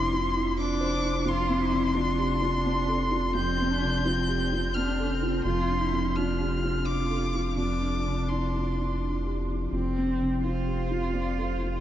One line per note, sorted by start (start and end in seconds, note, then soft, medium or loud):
0.00 5.41 F1 medium
0.00 1.24 F2 medium
0.00 1.29 C3 medium
0.00 0.58 D4 medium
0.00 0.27 E4 medium
0.00 0.62 E4 medium
0.00 0.56 C6 loud
0.13 0.36 F4 medium
0.36 0.72 E4 medium
0.58 0.95 D4 medium
0.58 1.28 D4 loud
0.58 1.30 D6 loud
0.80 1.17 C5 medium
1.02 1.26 E4 medium
1.25 3.31 F2 medium
1.25 1.62 F4 loud
1.25 3.35 C6 loud
1.49 1.86 C4 medium
1.61 1.97 E4 medium
1.72 2.09 C3 medium
1.95 3.34 D4 medium
1.95 2.32 F4 medium
2.18 2.42 G4 medium
2.41 2.79 F4 medium
2.65 3.03 C4 medium
2.88 3.27 A4 medium
3.11 3.49 F4 medium
3.34 5.41 F2 medium
3.34 3.73 C4 medium
3.34 4.76 G6 loud
3.60 3.97 C4 medium
3.71 4.08 D4 medium
3.83 4.20 C3 medium
4.05 4.77 C4 medium
4.05 4.43 F4 medium
4.28 4.52 G4 medium
4.53 4.90 F4 medium
4.74 5.13 C4 medium
4.74 5.13 D4 medium
4.74 5.44 F6 loud
4.99 5.36 A4 medium
5.11 5.46 C4 medium
5.22 5.45 F4 medium
5.44 9.68 F1 medium
5.44 7.55 F2 medium
5.44 5.82 F4 loud
5.44 6.17 C6 loud
5.69 6.07 D4 medium
5.81 6.17 E4 medium
5.93 6.30 C3 medium
6.15 6.52 D4 medium
6.15 6.54 F4 medium
6.15 6.87 F6 loud
6.40 6.64 G4 soft
6.51 6.88 C4 medium
6.64 7.02 F4 medium
6.85 7.25 D4 medium
6.85 7.57 F4 medium
6.85 7.57 D6 loud
7.10 7.48 A4 soft
7.34 7.58 F4 soft
7.57 9.68 F2 medium
7.57 9.33 D4 medium
7.57 8.30 D6 medium
7.81 8.19 D4 soft
8.06 8.44 C3 soft
8.29 8.68 E4 medium
8.29 9.36 C6 medium
8.56 8.78 F4 soft
8.78 9.16 E4 soft
9.02 9.40 D4 medium
9.26 9.63 G4 soft
9.50 9.73 E4 soft
9.72 11.80 F1 medium
9.72 11.79 F2 medium
9.72 10.40 C4 medium
9.97 10.35 C4 soft
10.20 10.58 C3 soft
10.43 11.80 F4 medium
10.43 10.81 F4 soft
10.43 11.15 C5 medium
10.67 10.90 G4 soft
10.91 11.27 F4 soft
11.13 11.50 C4 medium
11.13 11.47 D5 medium
11.38 11.74 A4 soft
11.48 11.80 C5 medium
11.62 11.80 F4 soft